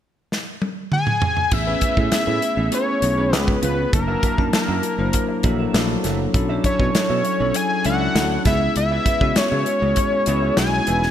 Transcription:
0.32 snare
0.62 high tom
0.92 analog synth lead G#5, mid tom
1.07 mid tom
1.22 floor tom
1.37 floor tom
1.51 fingered electric bass A1, tine electric piano A3 B3 C#4 E4 G#4, analog synth lead E5, muted clean electric guitar stroke, kick, crash
1.67 clean electric guitar C#4 G#4 B4
1.81 clean electric guitar C#4 G#4 B4, kick, closed hi-hat
1.97 fingered electric bass A2, tine electric piano A3 B3 C#4 E4 G#4, muted clean electric guitar stroke, kick
2.12 analog synth lead E5, muted clean electric guitar stroke, muted fingered electric bass stroke, snare, closed hi-hat
2.27 fingered electric bass A2, clean electric guitar C#4 G#4 B4
2.42 muted clean electric guitar stroke, closed hi-hat
2.57 fingered electric bass A1, tine electric piano A3 B3 C#4 E4 G#4, muted clean electric guitar stroke
2.72 clean electric guitar C#4 G#4 B4, analog synth lead C#5, closed hi-hat
2.87 muted clean electric guitar stroke
3.02 fingered electric bass B1, tine electric piano A3 B3 C#4 E4 G#4, muted clean electric guitar stroke, closed hi-hat
3.18 clean electric guitar C#4 G#4 B4
3.32 fingered electric bass C#2, tine electric piano G#3 B3 C#4 F4 G#4, analog synth lead B4, snare, closed hi-hat
3.48 muted clean electric guitar stroke, kick
3.62 fingered electric bass C#2, clean electric guitar C#4 F4 B4, analog synth lead B4, closed hi-hat
3.78 muted clean electric guitar stroke
3.93 fingered electric bass F#1, tine electric piano F#3 A#3 D4 E4 A5, analog synth lead A#4, muted clean electric guitar stroke, kick, closed hi-hat
4.08 clean electric guitar F#4 A#4 E5
4.23 clean electric guitar F#4 A#4 E5, kick, closed hi-hat
4.38 fingered electric bass F#2, tine electric piano F#3 A#3 D4 E4 A5, muted clean electric guitar stroke, kick
4.53 analog synth lead A#4, muted clean electric guitar stroke, muted fingered electric bass stroke, snare, closed hi-hat
4.68 fingered electric bass F#2, clean electric guitar F#4 A#4 E5
4.83 muted clean electric guitar stroke, closed hi-hat
4.98 fingered electric bass F#1, tine electric piano F#3 A#3 D4 E4 C5, muted clean electric guitar stroke
5.13 muted clean electric guitar stroke, kick, closed hi-hat
5.28 muted clean electric guitar stroke
5.43 fingered electric bass A#1, tine electric piano F#3 A#3 D4 E4 A4, clean electric guitar F#4 A#4 E5, kick, closed hi-hat
5.59 clean electric guitar F#4 A#4 E5
5.73 fingered electric bass A#1, tine electric piano F#3 A3 D4 E4 A4, snare, closed hi-hat
5.80 tine electric piano A#3
5.89 muted clean electric guitar stroke
6.04 fingered electric bass F#1, clean electric guitar F#4 A#4 E5, snare, closed hi-hat
6.20 muted clean electric guitar stroke
6.34 fingered electric bass B1, tine electric piano F#3 C#4 D4 E4 A4, muted clean electric guitar stroke, kick, closed hi-hat
6.49 clean electric guitar A4 D5 E5
6.64 clean electric guitar A4 D5 E5, analog synth lead C#5, kick, closed hi-hat
6.79 fingered electric bass B2, tine electric piano F#3 C#4 D4 E4 F#4, muted clean electric guitar stroke, kick
6.95 analog synth lead C#5, muted clean electric guitar stroke, muted fingered electric bass stroke, snare, closed hi-hat
7.10 fingered electric bass B2, clean electric guitar A4 D5 E5
7.25 muted clean electric guitar stroke, closed hi-hat
7.40 fingered electric bass B1, tine electric piano F#3 C#4 D4 E4 A4, muted clean electric guitar stroke
7.54 analog synth lead G#5, muted clean electric guitar stroke, closed hi-hat
7.70 muted clean electric guitar stroke
7.85 fingered electric bass C#2, tine electric piano F#3 C#4 D4 E4 A4, clean electric guitar A4 D5 E5, analog synth lead F#5, closed hi-hat
8.01 clean electric guitar A4 D5 E5
8.15 fingered electric bass D2, tine electric piano F#3 C#4 D4 E4 A4, snare, closed hi-hat
8.31 muted clean electric guitar stroke
8.45 fingered electric bass C#2, tine electric piano G#3 B3 C#4 E4 F#4, clean electric guitar G#4 B4 E5, analog synth lead E5, kick, snare, closed hi-hat
8.53 tine electric piano G#4
8.61 muted clean electric guitar stroke
8.76 fingered electric bass C#2, analog synth lead E5, muted clean electric guitar stroke, closed hi-hat
8.91 clean electric guitar G#4 B4 E5
9.06 clean electric guitar G#4 B4 E5, kick, closed hi-hat
9.21 fingered electric bass C#3, tine electric piano G#3 B3 C#4 E4 F#4, muted clean electric guitar stroke, kick
9.36 analog synth lead C#5, muted fingered electric bass stroke, muted clean electric guitar stroke, snare, closed hi-hat
9.52 fingered electric bass C#3, clean electric guitar G#4 B4 E5
9.66 muted clean electric guitar stroke, closed hi-hat
9.81 fingered electric bass C#2, tine electric piano G#3 B3 C#4 E4 G#4, muted clean electric guitar stroke
9.96 muted clean electric guitar stroke, kick, closed hi-hat
10.12 muted clean electric guitar stroke
10.26 fingered electric bass C#2, tine electric piano G#3 B3 C#4 E4 G#4, clean electric guitar G#4 B4 E5, closed hi-hat
10.42 clean electric guitar G#4 B4 E5
10.57 fingered electric bass B1, tine electric piano G#3 B3 C#4 D#4 F#4, analog synth lead G#5, snare, closed hi-hat
10.64 tine electric piano E4
10.73 muted clean electric guitar stroke
10.87 fingered electric bass E1, clean electric guitar G#4 B4 E5, closed hi-hat
11.03 muted clean electric guitar stroke, snare

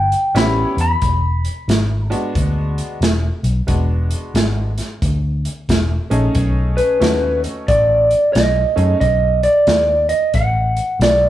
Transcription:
Already playing: fingered electric bass G1, clean electric guitar G5
0.12 closed hi-hat
0.35 fingered electric bass A1, upright piano G3 B3 C#4 E4, clean electric guitar B5, snare, closed hi-hat
0.77 fingered electric bass E2, closed hi-hat
0.81 clean electric guitar B5
1.02 fingered electric bass E1, kick, closed hi-hat
1.45 closed hi-hat
1.68 fingered electric bass G#1, snare, closed hi-hat
2.08 upright piano G#3 B3 D4 F#4, clean electric guitar A5, closed hi-hat
2.35 fingered electric bass D2, kick, closed hi-hat
2.78 closed hi-hat
3.00 fingered electric bass E1, snare, closed hi-hat
3.43 fingered electric bass B1, closed hi-hat
3.67 fingered electric bass E1, upright piano G#3 B3 D4 F#4, kick, closed hi-hat
4.11 closed hi-hat
4.34 fingered electric bass G#1, snare, closed hi-hat
4.78 snare, closed hi-hat
5.02 fingered electric bass D2, kick, closed hi-hat
5.45 closed hi-hat
5.69 fingered electric bass E1, kick, snare, closed hi-hat
6.10 fingered electric bass A#1, upright piano A3 C#4 D#4 G#4, closed hi-hat
6.35 fingered electric bass B1, kick, closed hi-hat
6.77 clean electric guitar B4, closed hi-hat
7.00 fingered electric bass D#2, upright piano A3 C#4 D#4 F#4, snare, closed hi-hat
7.44 closed hi-hat
7.68 fingered electric bass A1, clean electric guitar D5, kick, closed hi-hat
8.11 closed hi-hat
8.33 fingered electric bass B1, clean electric guitar D#5, snare, closed hi-hat
8.76 fingered electric bass F#2, upright piano A3 C#4 D#4 G#4, closed hi-hat
9.00 fingered electric bass B1, clean electric guitar D#5, kick, closed hi-hat
9.43 clean electric guitar D5, closed hi-hat
9.67 fingered electric bass D#2, snare, closed hi-hat
10.09 clean electric guitar D#5, closed hi-hat
10.34 fingered electric bass A1, clean electric guitar F#5, kick, closed hi-hat
10.77 closed hi-hat
10.99 fingered electric bass B1, clean electric guitar D5, snare, closed hi-hat

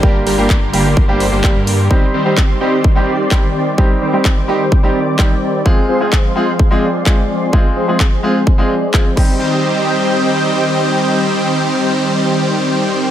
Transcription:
Already playing: analog synth pad G4 A#4 D5
0.03 supersaw synth D3 G3 A#3 G4 A#4, grand piano G3 A#3 D4 G4, analog synth pad C6, kick
0.27 detuned saw bass G1, supersaw synth D3 G3 A#3 G4 A#4, open hi-hat
0.38 detuned saw bass G1, supersaw synth D3 G3 A#3 G4 A#4, grand piano G3 A#3 D4 G4
0.50 kick, clap
0.73 detuned saw bass G1, supersaw synth D3 G3 A#3 G4 A#4, grand piano G3 A#3 D4 G4, open hi-hat
0.97 kick
1.08 detuned saw bass G1, supersaw synth D3 G3 A#3 G4 C5, grand piano G3 A#3 D4 G4
1.20 open hi-hat
1.32 detuned saw bass G1, supersaw synth D3 G3 A#3 G4 C5
1.43 grand piano G3 A#3 D4 G4, kick, clap
1.55 detuned saw bass G2, supersaw synth D3 G3 A#3 G4 A#4
1.67 open hi-hat
1.90 supersaw synth D#3 G3 C4 G4 C5, grand piano G3 C4 D#4 G4, analog synth pad D#4 C5 C6, kick
2.14 supersaw synth D#3 G3 C4 G4 C5
2.25 supersaw synth D#3 G3 C4 G4 C5, grand piano G3 C4 D#4 G4
2.37 kick, clap
2.60 supersaw synth D#3 G3 C4 G4 C5, grand piano G3 C4 D#4 G4
2.84 kick
2.95 supersaw synth D#3 G3 C4 G4 D5, grand piano G3 C4 D#4 G4
3.31 supersaw synth D#3 G3 C4 G4 D5, grand piano G3 C4 D#4 G4, kick, clap
3.78 supersaw synth D#3 G3 C4 G4 C5, grand piano G3 C4 D#4 G4, analog synth pad D6, kick
4.02 supersaw synth D#3 G3 C4 G4 C5
4.13 supersaw synth D#3 G3 C4 G4 C5, grand piano G3 C4 D#4 G4
4.25 kick, clap
4.48 supersaw synth D#3 G3 C4 G4 C5, grand piano G3 C4 D#4 G4
4.72 kick
4.83 supersaw synth D#3 G3 C4 G4 D5, grand piano G3 C4 D#4 G4
5.18 supersaw synth D#3 G3 C4 G4 D5, grand piano G3 C4 D#4 G4, kick, clap
5.65 supersaw synth F3 G#3 C4 G#4 C5, grand piano G#3 C4 F4 G#4, analog synth pad G#4 F5 C6, kick
5.89 supersaw synth F3 G#3 C4 G#4 C5
6.00 supersaw synth F3 G#3 C4 G#4 C5, grand piano G#3 C4 F4 G#4
6.13 kick, clap
6.35 supersaw synth F3 G#3 C4 G#4 C5, grand piano G#3 C4 F4 G#4
6.59 kick
6.70 supersaw synth F3 G#3 C4 G#4 D5, grand piano G#3 C4 F4 G#4
7.06 supersaw synth F3 G#3 C4 G#4 D5, grand piano G#3 C4 F4 G#4, kick, clap
7.52 supersaw synth F3 G#3 C4 G#4 C5, grand piano G#3 C4 F4 G#4, analog synth pad D#5, kick
7.77 supersaw synth F3 G#3 C4 G#4 C5
7.88 supersaw synth F3 G#3 C4 G#4 C5, grand piano G#3 C4 F4 G#4
8.00 kick, clap
8.23 supersaw synth F3 G#3 C4 G#4 C5, grand piano G#3 C4 F4 G#4
8.47 kick
8.58 supersaw synth F3 G#3 C4 G#4 D5, grand piano G#3 C4 F4 G#4
8.82 supersaw synth F3 G#3 C4 G#4 D5
8.93 grand piano G#3 C4 F4 G#4, kick, clap
9.06 supersaw synth F3 G#3 C4 G#4 C5
9.15 supersaw synth D#3 G3 C4 G4 C5, grand piano G3 C4 D#4 G4, analog synth pad C4 D#4 G4 D#5 G5, kick, crash

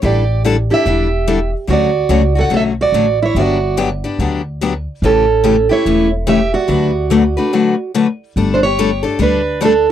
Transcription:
0.02 upright bass A1, steel-string acoustic guitar D3 G3 D4 E4 G4 A4 D5
0.45 steel-string acoustic guitar D3 G3 D4 E4 A4
0.70 steel-string acoustic guitar D4 E4 G4 A4 E5
0.86 upright bass E1, steel-string acoustic guitar D3 G3 D4 E4 A4
1.27 steel-string acoustic guitar D3 G3 D4 E4 A4
1.67 upright bass D2, steel-string acoustic guitar D3 F#3 A3 C#4 F#4
1.73 steel-string acoustic guitar D5
2.09 upright bass C#2, steel-string acoustic guitar D3 F#3 A3 C#4 F#4
2.35 steel-string acoustic guitar A3 C#4 F#4 A4
2.41 steel-string acoustic guitar F#5
2.50 upright bass B1, steel-string acoustic guitar D3 F#3 A3 C#4 F#4 A4
2.57 steel-string acoustic guitar E5
2.81 steel-string acoustic guitar F#4 D5
2.92 upright bass A1, steel-string acoustic guitar D3 F#3 A3 C#4 F#4
3.22 steel-string acoustic guitar E4 C#5
3.35 upright bass G1, steel-string acoustic guitar D3 F#3 B3 D4 G4
3.40 steel-string acoustic guitar F#4 D5
3.77 steel-string acoustic guitar D3 F#3 B3 D4 G4
4.04 steel-string acoustic guitar B3 D4 G4
4.19 upright bass D2, steel-string acoustic guitar D3 F#3 B3 D4 G4
4.61 steel-string acoustic guitar D3 F#3 B3 D4 G4
5.02 upright bass A1, steel-string acoustic guitar C#3 E3 A3 C#4 G4 A4
5.44 steel-string acoustic guitar C#3 E3 A3 C#4 G4
5.69 steel-string acoustic guitar A3 C#4 E4 G4 C#5
5.86 upright bass E1, steel-string acoustic guitar C#3 E3 A3 C#4 G4
6.27 steel-string acoustic guitar C#3 E3 A3 C#4 G4 E5
6.54 steel-string acoustic guitar F#4 D5
6.68 upright bass D2, steel-string acoustic guitar D3 F#3 A3 D4 F#4 B4
7.10 steel-string acoustic guitar D3 F#3 A3 D4 F#4 B4
7.37 steel-string acoustic guitar A3 D4 F#4 B4
7.53 steel-string acoustic guitar D3 F#3 A3 D4 F#4 B4
7.94 steel-string acoustic guitar D3 F#3 A3 D4 F#4 B4
8.36 upright bass G1, steel-string acoustic guitar G3 A3 D4 A4
8.54 steel-string acoustic guitar D4 C5
8.63 steel-string acoustic guitar G4 C#5
8.79 steel-string acoustic guitar G3 A3 D4 A4
9.03 steel-string acoustic guitar A3 D4 A4
9.19 upright bass D2, steel-string acoustic guitar G3 A3 D4 A4
9.23 steel-string acoustic guitar B4
9.61 steel-string acoustic guitar G3 A3 D4 A4
9.65 steel-string acoustic guitar A4

